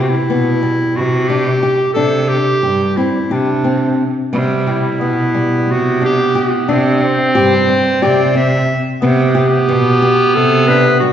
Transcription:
Already playing: cello C3, nylon-string guitar G4
0.02 clarinet F#4
0.10 clarinet E4
0.30 cello B2, nylon-string guitar B3
0.63 nylon-string guitar G3
0.96 cello C3, clarinet F#4
1.28 nylon-string guitar D4, clarinet G4
1.63 nylon-string guitar G4
1.93 cello C3, nylon-string guitar D4, clarinet A4
2.29 clarinet G4
2.63 cello G2, nylon-string guitar G4
2.97 nylon-string guitar C4, clarinet E4
3.31 cello C3, clarinet D4, nylon-string guitar G4
3.64 nylon-string guitar C4
4.33 cello C3, clarinet G3, nylon-string guitar B3
4.67 clarinet E4, nylon-string guitar G4
5.00 cello B2, clarinet B3, nylon-string guitar B3
5.35 nylon-string guitar G3
5.68 cello C3, clarinet F#4
6.01 nylon-string guitar D4
6.05 clarinet G4
6.35 nylon-string guitar G4
6.68 cello C3, clarinet C4, nylon-string guitar D4
7.04 clarinet C5
7.35 cello G2, nylon-string guitar G4
7.69 nylon-string guitar C4
8.02 cello C3, nylon-string guitar G4, clarinet D5
8.36 nylon-string guitar C4, clarinet E5
9.01 cello C3, clarinet B3, nylon-string guitar B3
9.35 nylon-string guitar G4, clarinet G4
9.68 cello B2, nylon-string guitar B3
10.02 nylon-string guitar G4
10.35 cello C3, clarinet A4
10.68 nylon-string guitar D4, clarinet B4
11.00 nylon-string guitar G3, clarinet F#4

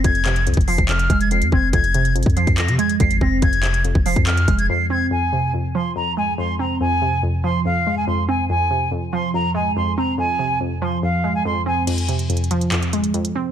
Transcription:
Already playing: synth pluck G#3 C4
0.04 808-style bass F1, synth pluck F2, flute G#6, kick, closed hi-hat
0.15 closed hi-hat
0.25 synth pluck C3, clap, closed hi-hat
0.36 closed hi-hat
0.47 808-style bass C2, synth pluck F2, closed hi-hat
0.54 808-style bass F1, kick, closed hi-hat
0.61 closed hi-hat
0.68 synth pluck F3, flute C7, open hi-hat
0.78 808-style bass F1, kick, closed hi-hat
0.89 synth pluck F2, flute F6, clap, closed hi-hat
0.99 closed hi-hat
1.10 808-style bass F1, synth pluck G#3, kick, closed hi-hat
1.21 flute G#6, closed hi-hat
1.31 synth pluck F2, flute C7, closed hi-hat
1.42 808-style bass F2, closed hi-hat
1.52 808-style bass F1, synth pluck C4, flute G#6, kick
1.73 808-style bass F1, synth pluck F2, flute G#6, kick, closed hi-hat
1.84 closed hi-hat
1.94 synth pluck C3, closed hi-hat
2.05 closed hi-hat
2.15 808-style bass G#1, synth pluck F2, closed hi-hat
2.23 808-style bass F2, kick, closed hi-hat
2.30 closed hi-hat
2.37 synth pluck F3, flute C7, closed hi-hat
2.47 808-style bass F2, kick, closed hi-hat
2.58 synth pluck F2, flute A#6, clap, closed hi-hat
2.68 808-style bass C3, closed hi-hat
2.78 synth pluck G#3, flute G#6, closed hi-hat
2.89 closed hi-hat
3.00 808-style bass G#1, synth pluck F2, flute C7, kick, closed hi-hat
3.11 closed hi-hat
3.21 808-style bass F1, synth pluck C4, flute A#6, kick
3.42 808-style bass F1, synth pluck F2, flute G#6, kick, closed hi-hat
3.53 closed hi-hat
3.63 synth pluck C3, clap, closed hi-hat
3.74 closed hi-hat
3.85 synth pluck F2, closed hi-hat
3.95 808-style bass F1, kick
4.06 synth pluck F3, flute C7, open hi-hat
4.16 808-style bass F2, kick, closed hi-hat
4.27 synth pluck F2, flute F6, clap, closed hi-hat
4.37 closed hi-hat
4.48 808-style bass F1, synth pluck G#3, kick, closed hi-hat
4.59 flute G#6, closed hi-hat
4.69 synth pluck F2, flute C7
4.90 synth pluck C4, flute G#6
5.11 synth pluck F2, flute G#5
5.33 synth pluck C3
5.54 synth pluck F2
5.75 synth pluck F3, flute C6
5.96 synth pluck F2, flute A#5
6.17 synth pluck G#3, flute G#5
6.38 synth pluck F2, flute C6
6.59 synth pluck C4, flute A#5
6.80 synth pluck F2, flute G#5
7.02 synth pluck C3
7.23 synth pluck F2
7.44 synth pluck F3, flute C6
7.65 synth pluck F2, flute F5
7.87 synth pluck G#3
7.97 flute G#5
8.07 synth pluck F2, flute C6
8.28 synth pluck C4, flute G#5
8.49 synth pluck F2, flute G#5
8.71 synth pluck C3
8.91 synth pluck F2
9.13 synth pluck F3, flute C6
9.34 synth pluck F2, flute A#5
9.54 synth pluck G#3, flute G#5
9.76 synth pluck F2, flute C6
9.97 synth pluck C4, flute A#5
10.18 synth pluck F2, flute G#5
10.39 synth pluck C3
10.61 synth pluck F2
10.82 synth pluck F3, flute C6
11.03 synth pluck F2, flute F5
11.24 synth pluck G#3
11.35 flute G#5
11.45 synth pluck F2, flute C6
11.66 synth pluck C4, flute G#5
11.87 synth pluck F2, closed hi-hat, crash
11.98 closed hi-hat
12.09 synth pluck C3, closed hi-hat
12.19 closed hi-hat
12.30 synth pluck F2, closed hi-hat
12.37 closed hi-hat
12.44 closed hi-hat
12.51 synth pluck F3, closed hi-hat
12.61 closed hi-hat
12.72 synth pluck F2, clap, closed hi-hat
12.82 closed hi-hat
12.93 synth pluck G#3, closed hi-hat
13.04 closed hi-hat
13.14 synth pluck F2, closed hi-hat
13.25 closed hi-hat
13.35 synth pluck C4

